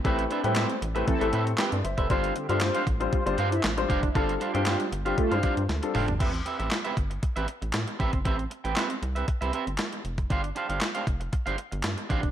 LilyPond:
<<
  \new Staff \with { instrumentName = "Clean electric guitar" } { \time 4/4 \key a \minor \tempo 4 = 117 <c' g' b' e''>16 r16 <c' g' b' e''>16 <c' g' b' g''>16 <c' g' b' e''>16 r8 <c' g' b' e''>16 r16 <c' g' b' e''>16 <c' g' b' e''>16 r16 <c' g' b' g''>16 r8 <c' g' b' e''>16 | <d' g' c'' f''>8 r16 <d' g' c'' f''>16 r16 <d' g' c'' f''>16 r4 <d' g' c'' f''>16 r8. <d' g' c'' f''>16 r16 | <d' g' c'' f''>16 r16 <d' g' c'' f''>16 <d' g' c'' g''>16 <d' g' c'' f''>16 r8 <d' g' c'' f''>16 r16 <d' g' c'' f''>16 <d' g' c'' f''>16 r8. <d' g' c'' f''>16 r16 | <c' g' b' e''>16 r16 <c' g' b' e''>16 <c' g' b' e''>16 r16 <c' g' b' e''>16 r8. <c' g' b' e''>16 r4 <c' g' b' e''>16 r16 |
<c' g' b' e''>16 r8 <c' g' b' g''>16 <c' g' b' e''>16 r8 <c' g' b' e''>16 r16 <c' g' b' e''>16 <c' g' b' e''>16 r4 r16 | <d' g' c'' f''>16 r16 <d' g' c'' f''>16 <d' g' c'' f''>16 r16 <d' g' c'' f''>16 r8. <d' g' c'' f''>16 r4 <d' g' c'' f''>16 r16 | }
  \new Staff \with { instrumentName = "Analog polysynth" } { \time 4/4 \key a \minor r8 <d' b' d''>16 <g e' c''>8. r8 <e c' a'>8 r4. | r8 <d c' g'>16 <a f' a'>16 <g f' c''>8 r8 <g f' c''>16 <g f' d''>16 r16 <e' c'' e''>16 r4 | r8 <g f' d''>16 <g f' c''>8. r8 <a f' a'>8 r4. | r1 |
r1 | r1 | }
  \new Staff \with { instrumentName = "Grand piano" } { \time 4/4 \key a \minor << { r2. <g' b'>16 <b' d''>16 <c'' e''>16 <a' c''>16~ | <a' c''>16 r2. r8. | r1 | r1 |
r1 | r1 | } \\ { <a c' e' g' b'>8 r16 <a c' e' g' b'>8 r8 <a c' e' g' b'>16 r16 <a c' e' g' a'>8 r4 r16 | <g c' d' f' c''>8 r16 <g c' d' f' c''>8 r8 <g c' d' f' c''>16 r16 <g c' d' f' c''>8 r8 <g c' d' f' c''>8 r16 | <g c' d' f' a'>8 r16 <g c' d' f' g'>8 r8 <g c' d' f' g'>16 r16 <g c' d' f' c''>8 r8 <g c' d' f' a'>8 r16 | r1 |
r1 | r1 | } >> }
  \new Staff \with { instrumentName = "Analog synth bass" } { \clef bass \time 4/4 \key a \minor a,,8 r16 a,8 r16 a,,8 r16 a,,16 a,8 r16 g,16 g,,16 f,,16 | g,,8 r16 g,8 r16 a,,8 r16 g,,16 g,8 a,,8 f,,8 | g,,8 r16 g,8 r16 g,,8 r16 g,16 r16 g,16 d,16 r16 f,,16 g,,16 | a,,8 r16 a,,16 r8 g,,8 r16 a,,16 r16 a,,16 a,16 r16 a,,16 g,,16 |
a,,8 r16 a,,16 r8 c,8 r16 c,16 r16 g,,16 r8 f,,8 | g,,8 r16 g,,16 r8 f,,8 r16 g,,16 r16 g,,16 g,16 r16 a,,16 f,,16 | }
  \new DrumStaff \with { instrumentName = "Drums" } \drummode { \time 4/4 <hh bd>16 hh16 hh16 hh16 <hc hh sn>16 hh16 hh16 hh16 <hh bd>16 hh16 hh16 hh16 <hc hh sn>16 hh16 hh16 <hh bd>16 | <hh bd>16 hh16 hh16 hh16 <hc hh sn>16 hh16 <hh bd>16 hh16 <hh bd>16 hh16 hh16 hh16 <hc hh sn>16 hh16 <hh bd>16 <hh bd>16 | <hh bd>16 hh16 hh16 hh16 <hc hh sn>16 hh16 hh16 hh16 <hh bd>16 hh16 <hh bd>16 hh16 <hh sn>16 hh16 <hho toml>16 <hh tomfh>16 | <cymc hh bd>16 hh16 hh16 hh16 <hc hh sn>16 hh16 <hh bd>16 hh16 <hh bd>16 hh16 hh16 hh16 <hc hh sn>16 hh16 <hh bd>16 <hh bd>16 |
<hh bd>16 hh16 hh16 hh16 <hc hh sn>16 hh16 hh16 hh16 <hh bd>16 hh16 hh16 hh16 <hc hh sn>16 hh16 hh16 <hh bd>16 | <hh bd>16 hh16 hh16 hh16 <hc hh sn>16 hh16 <hh bd>16 hh16 <hh bd>16 hh16 hh16 hh16 <hc hh sn>16 hh16 <hh bd>16 <hh bd>16 | }
>>